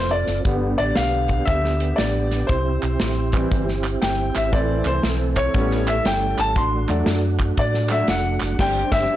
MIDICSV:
0, 0, Header, 1, 5, 480
1, 0, Start_track
1, 0, Key_signature, 0, "major"
1, 0, Tempo, 508906
1, 431, Time_signature, 4, 2, 24, 8
1, 8644, End_track
2, 0, Start_track
2, 0, Title_t, "Grand piano"
2, 0, Program_c, 0, 0
2, 0, Note_on_c, 0, 72, 85
2, 103, Note_on_c, 0, 74, 84
2, 111, Note_off_c, 0, 72, 0
2, 352, Note_off_c, 0, 74, 0
2, 421, Note_on_c, 0, 50, 52
2, 428, Note_on_c, 0, 55, 47
2, 433, Note_on_c, 0, 59, 56
2, 735, Note_on_c, 0, 74, 96
2, 896, Note_off_c, 0, 74, 0
2, 900, Note_on_c, 0, 77, 94
2, 1372, Note_on_c, 0, 76, 99
2, 1401, Note_off_c, 0, 77, 0
2, 1848, Note_on_c, 0, 74, 77
2, 1877, Note_off_c, 0, 76, 0
2, 2310, Note_off_c, 0, 50, 0
2, 2314, Note_off_c, 0, 55, 0
2, 2316, Note_off_c, 0, 59, 0
2, 2330, Note_on_c, 0, 72, 71
2, 2355, Note_off_c, 0, 74, 0
2, 3141, Note_on_c, 0, 52, 54
2, 3144, Note_on_c, 0, 55, 49
2, 3151, Note_on_c, 0, 60, 54
2, 3421, Note_off_c, 0, 52, 0
2, 3423, Note_off_c, 0, 55, 0
2, 3426, Note_off_c, 0, 60, 0
2, 3575, Note_off_c, 0, 72, 0
2, 3787, Note_on_c, 0, 79, 75
2, 4111, Note_on_c, 0, 76, 75
2, 4120, Note_off_c, 0, 79, 0
2, 4263, Note_on_c, 0, 52, 53
2, 4269, Note_on_c, 0, 57, 47
2, 4273, Note_on_c, 0, 74, 80
2, 4274, Note_on_c, 0, 60, 61
2, 4277, Note_off_c, 0, 76, 0
2, 4592, Note_on_c, 0, 72, 74
2, 4603, Note_off_c, 0, 74, 0
2, 4837, Note_off_c, 0, 72, 0
2, 5064, Note_on_c, 0, 73, 91
2, 5190, Note_off_c, 0, 52, 0
2, 5193, Note_off_c, 0, 57, 0
2, 5195, Note_off_c, 0, 60, 0
2, 5225, Note_on_c, 0, 55, 59
2, 5233, Note_on_c, 0, 59, 53
2, 5233, Note_on_c, 0, 61, 62
2, 5544, Note_on_c, 0, 76, 96
2, 5558, Note_off_c, 0, 73, 0
2, 5588, Note_off_c, 0, 55, 0
2, 5592, Note_off_c, 0, 59, 0
2, 5592, Note_off_c, 0, 61, 0
2, 5717, Note_on_c, 0, 79, 92
2, 5718, Note_off_c, 0, 76, 0
2, 6032, Note_on_c, 0, 81, 96
2, 6034, Note_off_c, 0, 79, 0
2, 6201, Note_off_c, 0, 81, 0
2, 6201, Note_on_c, 0, 84, 96
2, 6485, Note_off_c, 0, 84, 0
2, 6494, Note_on_c, 0, 54, 58
2, 6499, Note_on_c, 0, 57, 52
2, 6505, Note_on_c, 0, 62, 63
2, 6776, Note_off_c, 0, 54, 0
2, 6779, Note_off_c, 0, 57, 0
2, 6782, Note_off_c, 0, 62, 0
2, 7158, Note_on_c, 0, 74, 89
2, 7459, Note_on_c, 0, 54, 50
2, 7461, Note_on_c, 0, 57, 44
2, 7468, Note_on_c, 0, 62, 54
2, 7471, Note_on_c, 0, 76, 93
2, 7474, Note_off_c, 0, 74, 0
2, 7611, Note_off_c, 0, 54, 0
2, 7613, Note_off_c, 0, 57, 0
2, 7616, Note_off_c, 0, 62, 0
2, 7623, Note_off_c, 0, 76, 0
2, 7635, Note_on_c, 0, 78, 86
2, 8078, Note_off_c, 0, 78, 0
2, 8103, Note_on_c, 0, 55, 55
2, 8107, Note_on_c, 0, 60, 52
2, 8113, Note_on_c, 0, 79, 109
2, 8114, Note_on_c, 0, 62, 64
2, 8415, Note_on_c, 0, 76, 124
2, 8430, Note_off_c, 0, 79, 0
2, 8644, Note_off_c, 0, 55, 0
2, 8644, Note_off_c, 0, 60, 0
2, 8644, Note_off_c, 0, 62, 0
2, 8644, Note_off_c, 0, 76, 0
2, 8644, End_track
3, 0, Start_track
3, 0, Title_t, "Tonewheel organ"
3, 0, Program_c, 1, 16
3, 0, Note_on_c, 1, 60, 66
3, 0, Note_on_c, 1, 65, 61
3, 0, Note_on_c, 1, 69, 72
3, 392, Note_off_c, 1, 69, 0
3, 410, Note_off_c, 1, 65, 0
3, 411, Note_off_c, 1, 60, 0
3, 443, Note_on_c, 1, 62, 60
3, 445, Note_on_c, 1, 59, 64
3, 448, Note_on_c, 1, 67, 70
3, 2339, Note_off_c, 1, 62, 0
3, 2341, Note_off_c, 1, 59, 0
3, 2342, Note_off_c, 1, 67, 0
3, 2356, Note_on_c, 1, 64, 60
3, 2359, Note_on_c, 1, 60, 64
3, 2360, Note_on_c, 1, 67, 72
3, 4257, Note_off_c, 1, 60, 0
3, 4257, Note_off_c, 1, 67, 0
3, 4276, Note_on_c, 1, 60, 71
3, 4280, Note_on_c, 1, 69, 71
3, 5224, Note_off_c, 1, 60, 0
3, 5225, Note_off_c, 1, 69, 0
3, 5230, Note_on_c, 1, 57, 57
3, 5231, Note_on_c, 1, 55, 64
3, 5232, Note_on_c, 1, 61, 60
3, 5236, Note_on_c, 1, 69, 69
3, 6156, Note_off_c, 1, 64, 0
3, 6175, Note_off_c, 1, 57, 0
3, 6181, Note_off_c, 1, 55, 0
3, 6182, Note_off_c, 1, 61, 0
3, 6184, Note_off_c, 1, 69, 0
3, 6187, Note_on_c, 1, 57, 68
3, 6188, Note_on_c, 1, 62, 66
3, 6188, Note_on_c, 1, 66, 75
3, 8086, Note_off_c, 1, 57, 0
3, 8087, Note_off_c, 1, 66, 0
3, 8106, Note_on_c, 1, 60, 68
3, 8112, Note_on_c, 1, 67, 80
3, 8644, Note_off_c, 1, 60, 0
3, 8644, Note_off_c, 1, 62, 0
3, 8644, Note_off_c, 1, 67, 0
3, 8644, End_track
4, 0, Start_track
4, 0, Title_t, "Fingered electric bass"
4, 0, Program_c, 2, 33
4, 0, Note_on_c, 2, 29, 87
4, 212, Note_off_c, 2, 29, 0
4, 260, Note_on_c, 2, 30, 79
4, 405, Note_off_c, 2, 30, 0
4, 426, Note_on_c, 2, 31, 103
4, 693, Note_off_c, 2, 31, 0
4, 744, Note_on_c, 2, 33, 78
4, 887, Note_off_c, 2, 33, 0
4, 911, Note_on_c, 2, 35, 76
4, 1320, Note_off_c, 2, 35, 0
4, 1398, Note_on_c, 2, 38, 86
4, 1803, Note_off_c, 2, 38, 0
4, 1874, Note_on_c, 2, 33, 88
4, 2281, Note_off_c, 2, 33, 0
4, 2353, Note_on_c, 2, 36, 96
4, 2617, Note_off_c, 2, 36, 0
4, 2668, Note_on_c, 2, 35, 85
4, 2810, Note_off_c, 2, 35, 0
4, 2836, Note_on_c, 2, 33, 93
4, 3243, Note_off_c, 2, 33, 0
4, 3315, Note_on_c, 2, 31, 86
4, 3722, Note_off_c, 2, 31, 0
4, 3790, Note_on_c, 2, 31, 91
4, 4056, Note_off_c, 2, 31, 0
4, 4111, Note_on_c, 2, 32, 84
4, 4251, Note_off_c, 2, 32, 0
4, 4273, Note_on_c, 2, 33, 102
4, 4537, Note_off_c, 2, 33, 0
4, 4579, Note_on_c, 2, 36, 88
4, 4725, Note_off_c, 2, 36, 0
4, 4751, Note_on_c, 2, 35, 89
4, 5159, Note_off_c, 2, 35, 0
4, 5232, Note_on_c, 2, 33, 101
4, 5640, Note_off_c, 2, 33, 0
4, 5707, Note_on_c, 2, 31, 91
4, 5974, Note_off_c, 2, 31, 0
4, 6022, Note_on_c, 2, 32, 89
4, 6166, Note_off_c, 2, 32, 0
4, 6186, Note_on_c, 2, 33, 107
4, 6453, Note_off_c, 2, 33, 0
4, 6501, Note_on_c, 2, 40, 95
4, 6645, Note_off_c, 2, 40, 0
4, 6665, Note_on_c, 2, 42, 84
4, 7075, Note_off_c, 2, 42, 0
4, 7150, Note_on_c, 2, 45, 96
4, 7557, Note_off_c, 2, 45, 0
4, 7625, Note_on_c, 2, 29, 95
4, 7890, Note_off_c, 2, 29, 0
4, 7938, Note_on_c, 2, 30, 84
4, 8082, Note_off_c, 2, 30, 0
4, 8103, Note_on_c, 2, 31, 112
4, 8316, Note_off_c, 2, 31, 0
4, 8413, Note_on_c, 2, 31, 110
4, 8530, Note_off_c, 2, 31, 0
4, 8644, End_track
5, 0, Start_track
5, 0, Title_t, "Drums"
5, 255, Note_on_c, 9, 38, 35
5, 259, Note_on_c, 9, 42, 82
5, 349, Note_off_c, 9, 38, 0
5, 353, Note_off_c, 9, 42, 0
5, 423, Note_on_c, 9, 42, 77
5, 426, Note_on_c, 9, 36, 110
5, 518, Note_off_c, 9, 42, 0
5, 520, Note_off_c, 9, 36, 0
5, 740, Note_on_c, 9, 42, 61
5, 834, Note_off_c, 9, 42, 0
5, 902, Note_on_c, 9, 38, 106
5, 905, Note_on_c, 9, 42, 89
5, 996, Note_off_c, 9, 38, 0
5, 1000, Note_off_c, 9, 42, 0
5, 1210, Note_on_c, 9, 42, 61
5, 1220, Note_on_c, 9, 36, 94
5, 1304, Note_off_c, 9, 42, 0
5, 1314, Note_off_c, 9, 36, 0
5, 1390, Note_on_c, 9, 42, 86
5, 1393, Note_on_c, 9, 36, 106
5, 1484, Note_off_c, 9, 42, 0
5, 1487, Note_off_c, 9, 36, 0
5, 1553, Note_on_c, 9, 38, 32
5, 1647, Note_off_c, 9, 38, 0
5, 1701, Note_on_c, 9, 42, 72
5, 1795, Note_off_c, 9, 42, 0
5, 1868, Note_on_c, 9, 42, 93
5, 1872, Note_on_c, 9, 38, 105
5, 1962, Note_off_c, 9, 42, 0
5, 1967, Note_off_c, 9, 38, 0
5, 2179, Note_on_c, 9, 38, 35
5, 2183, Note_on_c, 9, 42, 79
5, 2273, Note_off_c, 9, 38, 0
5, 2277, Note_off_c, 9, 42, 0
5, 2347, Note_on_c, 9, 42, 81
5, 2352, Note_on_c, 9, 36, 106
5, 2441, Note_off_c, 9, 42, 0
5, 2446, Note_off_c, 9, 36, 0
5, 2665, Note_on_c, 9, 42, 62
5, 2667, Note_on_c, 9, 39, 87
5, 2759, Note_off_c, 9, 42, 0
5, 2761, Note_off_c, 9, 39, 0
5, 2827, Note_on_c, 9, 38, 103
5, 2830, Note_on_c, 9, 42, 81
5, 2921, Note_off_c, 9, 38, 0
5, 2925, Note_off_c, 9, 42, 0
5, 3134, Note_on_c, 9, 42, 57
5, 3143, Note_on_c, 9, 36, 87
5, 3156, Note_on_c, 9, 39, 99
5, 3228, Note_off_c, 9, 42, 0
5, 3237, Note_off_c, 9, 36, 0
5, 3250, Note_off_c, 9, 39, 0
5, 3316, Note_on_c, 9, 36, 105
5, 3316, Note_on_c, 9, 42, 79
5, 3410, Note_off_c, 9, 36, 0
5, 3410, Note_off_c, 9, 42, 0
5, 3474, Note_on_c, 9, 38, 30
5, 3568, Note_off_c, 9, 38, 0
5, 3620, Note_on_c, 9, 39, 95
5, 3623, Note_on_c, 9, 42, 73
5, 3714, Note_off_c, 9, 39, 0
5, 3718, Note_off_c, 9, 42, 0
5, 3792, Note_on_c, 9, 42, 95
5, 3796, Note_on_c, 9, 38, 99
5, 3886, Note_off_c, 9, 42, 0
5, 3891, Note_off_c, 9, 38, 0
5, 4102, Note_on_c, 9, 38, 36
5, 4106, Note_on_c, 9, 42, 84
5, 4107, Note_on_c, 9, 39, 79
5, 4196, Note_off_c, 9, 38, 0
5, 4200, Note_off_c, 9, 42, 0
5, 4201, Note_off_c, 9, 39, 0
5, 4271, Note_on_c, 9, 36, 112
5, 4271, Note_on_c, 9, 42, 83
5, 4365, Note_off_c, 9, 36, 0
5, 4365, Note_off_c, 9, 42, 0
5, 4575, Note_on_c, 9, 39, 92
5, 4586, Note_on_c, 9, 42, 62
5, 4669, Note_off_c, 9, 39, 0
5, 4680, Note_off_c, 9, 42, 0
5, 4748, Note_on_c, 9, 38, 98
5, 4752, Note_on_c, 9, 42, 87
5, 4842, Note_off_c, 9, 38, 0
5, 4846, Note_off_c, 9, 42, 0
5, 5054, Note_on_c, 9, 42, 62
5, 5060, Note_on_c, 9, 36, 90
5, 5065, Note_on_c, 9, 39, 99
5, 5148, Note_off_c, 9, 42, 0
5, 5154, Note_off_c, 9, 36, 0
5, 5159, Note_off_c, 9, 39, 0
5, 5227, Note_on_c, 9, 42, 89
5, 5230, Note_on_c, 9, 36, 113
5, 5321, Note_off_c, 9, 42, 0
5, 5325, Note_off_c, 9, 36, 0
5, 5388, Note_on_c, 9, 38, 32
5, 5482, Note_off_c, 9, 38, 0
5, 5542, Note_on_c, 9, 42, 75
5, 5543, Note_on_c, 9, 39, 101
5, 5636, Note_off_c, 9, 42, 0
5, 5638, Note_off_c, 9, 39, 0
5, 5707, Note_on_c, 9, 42, 96
5, 5712, Note_on_c, 9, 38, 101
5, 5802, Note_off_c, 9, 42, 0
5, 5807, Note_off_c, 9, 38, 0
5, 6019, Note_on_c, 9, 42, 85
5, 6021, Note_on_c, 9, 39, 83
5, 6114, Note_off_c, 9, 42, 0
5, 6116, Note_off_c, 9, 39, 0
5, 6188, Note_on_c, 9, 36, 107
5, 6188, Note_on_c, 9, 42, 78
5, 6282, Note_off_c, 9, 36, 0
5, 6282, Note_off_c, 9, 42, 0
5, 6497, Note_on_c, 9, 39, 88
5, 6504, Note_on_c, 9, 42, 69
5, 6591, Note_off_c, 9, 39, 0
5, 6598, Note_off_c, 9, 42, 0
5, 6661, Note_on_c, 9, 38, 105
5, 6664, Note_on_c, 9, 42, 86
5, 6755, Note_off_c, 9, 38, 0
5, 6759, Note_off_c, 9, 42, 0
5, 6967, Note_on_c, 9, 42, 59
5, 6974, Note_on_c, 9, 39, 94
5, 6975, Note_on_c, 9, 36, 87
5, 7061, Note_off_c, 9, 42, 0
5, 7068, Note_off_c, 9, 39, 0
5, 7070, Note_off_c, 9, 36, 0
5, 7144, Note_on_c, 9, 42, 87
5, 7146, Note_on_c, 9, 36, 108
5, 7238, Note_off_c, 9, 42, 0
5, 7241, Note_off_c, 9, 36, 0
5, 7301, Note_on_c, 9, 38, 33
5, 7395, Note_off_c, 9, 38, 0
5, 7444, Note_on_c, 9, 39, 95
5, 7453, Note_on_c, 9, 42, 77
5, 7539, Note_off_c, 9, 39, 0
5, 7547, Note_off_c, 9, 42, 0
5, 7618, Note_on_c, 9, 42, 98
5, 7623, Note_on_c, 9, 38, 109
5, 7713, Note_off_c, 9, 42, 0
5, 7717, Note_off_c, 9, 38, 0
5, 7925, Note_on_c, 9, 39, 87
5, 7933, Note_on_c, 9, 38, 36
5, 7937, Note_on_c, 9, 42, 83
5, 8019, Note_off_c, 9, 39, 0
5, 8027, Note_off_c, 9, 38, 0
5, 8031, Note_off_c, 9, 42, 0
5, 8102, Note_on_c, 9, 36, 109
5, 8103, Note_on_c, 9, 38, 100
5, 8103, Note_on_c, 9, 49, 81
5, 8196, Note_off_c, 9, 36, 0
5, 8197, Note_off_c, 9, 38, 0
5, 8197, Note_off_c, 9, 49, 0
5, 8411, Note_on_c, 9, 38, 110
5, 8412, Note_on_c, 9, 36, 108
5, 8505, Note_off_c, 9, 38, 0
5, 8507, Note_off_c, 9, 36, 0
5, 8644, End_track
0, 0, End_of_file